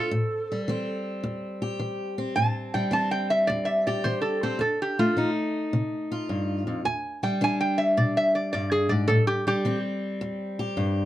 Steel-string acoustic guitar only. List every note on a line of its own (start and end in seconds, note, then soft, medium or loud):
0.00 0.69 C4 medium
0.11 0.64 A2 medium
0.52 2.74 G3 medium
0.68 1.20 E3 medium
0.68 2.18 C4 medium
1.24 1.76 E2 medium
1.62 2.34 G4 medium
1.79 2.32 E3 medium
2.18 2.92 C4 medium
2.37 2.89 A2 medium
2.75 4.61 G3 soft
2.91 3.44 E3 medium
2.91 4.42 C4 medium
3.50 4.01 E2 medium
3.87 4.59 G4 medium
4.05 4.57 E3 medium
4.43 4.59 C4 medium
4.59 5.12 F2 medium
4.99 6.84 A3 medium
5.17 5.69 F3 medium
5.17 6.84 D#4 medium
5.73 6.26 C3 medium
6.12 6.84 F4 medium
6.29 6.66 G2 medium
6.67 6.85 F2 medium
6.85 7.38 E2 medium
7.23 9.46 G3 medium
7.41 7.94 E3 medium
7.41 9.08 D4 medium
7.98 8.50 B2 medium
8.54 8.91 G2 medium
8.91 9.10 G#2 medium
9.09 9.62 A2 medium
9.47 11.05 G3 medium
9.65 10.18 E3 medium
9.65 11.05 C4 medium
10.21 10.74 E2 medium
10.59 11.05 G4 medium
10.77 11.05 G2 medium